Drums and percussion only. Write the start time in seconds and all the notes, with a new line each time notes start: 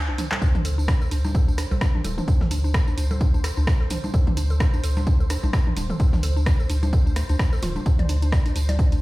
0.18 open hi-hat, high tom, tambourine
0.32 clap, tambourine, low conga
0.42 kick, closed hi-hat, tambourine
0.55 closed hi-hat, high tom
0.65 closed hi-hat, open hi-hat, tambourine
0.79 tambourine
0.88 kick, cross-stick, snare, closed hi-hat, tambourine
1.01 tambourine
1.11 closed hi-hat, open hi-hat, tambourine
1.24 snare, tambourine, low conga
1.35 kick, closed hi-hat, tambourine
1.48 tambourine
1.58 cross-stick, open hi-hat, tambourine
1.71 tambourine, low conga
1.81 kick, cross-stick, snare, closed hi-hat, tambourine
1.94 high tom
2.04 closed hi-hat, open hi-hat, tambourine, low conga
2.18 high tom, tambourine
2.28 kick, closed hi-hat, tambourine
2.41 snare, high tom
2.51 closed hi-hat, open hi-hat, tambourine
2.65 tambourine
2.74 kick, cross-stick, snare, closed hi-hat, tambourine
2.88 tambourine
2.98 closed hi-hat, open hi-hat, tambourine
3.11 tambourine, low conga
3.21 kick, closed hi-hat, tambourine
3.34 tambourine
3.44 cross-stick, closed hi-hat, open hi-hat, tambourine
3.57 tambourine
3.67 kick, cross-stick, snare, closed hi-hat, tambourine
3.81 snare
3.90 snare, closed hi-hat, open hi-hat, high tom, tambourine
4.04 tambourine, low conga
4.14 kick, closed hi-hat, tambourine
4.27 closed hi-hat, high tom
4.37 closed hi-hat, open hi-hat, tambourine
4.50 tambourine
4.60 kick, cross-stick, snare, closed hi-hat, tambourine
4.74 tambourine
4.84 closed hi-hat, open hi-hat, tambourine
4.97 snare, tambourine, low conga
5.07 kick, closed hi-hat, tambourine
5.20 tambourine
5.30 cross-stick, open hi-hat, tambourine
5.43 tambourine, low conga
5.53 kick, cross-stick, snare, closed hi-hat, tambourine
5.67 high tom
5.77 closed hi-hat, open hi-hat, tambourine, low conga
5.90 high tom, tambourine
6.00 kick, closed hi-hat, tambourine
6.13 snare, high tom, tambourine
6.23 closed hi-hat, open hi-hat, tambourine
6.37 tambourine
6.46 kick, cross-stick, snare, closed hi-hat, tambourine
6.60 tambourine
6.70 closed hi-hat, open hi-hat, tambourine
6.83 open hi-hat, tambourine, low conga
6.93 kick, closed hi-hat, tambourine
7.07 tambourine
7.16 cross-stick, closed hi-hat, open hi-hat, tambourine
7.29 open hi-hat, tambourine
7.39 kick, cross-stick, snare, closed hi-hat, tambourine
7.53 snare, tambourine
7.62 snare, closed hi-hat, open hi-hat, high tom, tambourine
7.76 tambourine, low conga
7.86 kick, closed hi-hat, tambourine
7.99 closed hi-hat, high tom
8.09 closed hi-hat, open hi-hat, tambourine
8.22 closed hi-hat, tambourine
8.32 kick, cross-stick, snare, closed hi-hat, tambourine
8.45 closed hi-hat, tambourine
8.56 closed hi-hat, open hi-hat, tambourine
8.69 snare, closed hi-hat, tambourine, low conga
8.79 kick, closed hi-hat, tambourine
8.92 closed hi-hat, tambourine